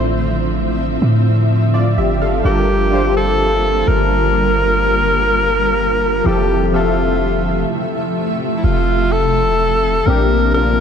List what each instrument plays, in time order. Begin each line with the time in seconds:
Already playing: 808-style bass A1, synth keys A2 A3 D4 E4 F4 C5, ambient pad D3 F3 C4 E5
1.02 808-style bass A2
1.74 synth keys F4 D5
1.97 808-style bass G1, synth keys G4 E5
2.22 synth keys A4 F5
2.43 808-style bass G1, synth keys G3 D4 F4 A4, ambient pad G3 A#3 F4, alto saxophone G4
2.47 synth keys A#4
2.91 synth keys G3 D4 F4 G4
2.95 synth keys C5
3.17 alto saxophone A4
3.88 808-style bass G1, alto saxophone A#4
6.24 808-style bass F1, ambient pad C3 F3 A3 E5, synth keys F3 C4 E4 G4, alto saxophone G4
6.28 synth keys A4
6.67 alto saxophone G4
6.72 synth keys F3 C4 G4 E5, alto saxophone F4
6.76 synth keys A4
8.57 alto saxophone E4
8.64 808-style bass F1, alto saxophone F4
9.12 alto saxophone A4
10.06 808-style bass A#1, synth keys A#2 A#3 C4 D4, ambient pad D3 G3 A#3 F4, alto saxophone A#4
10.10 synth keys G4
10.53 synth keys A#2 A#3 C4 D4, alto saxophone A#4
10.57 synth keys F4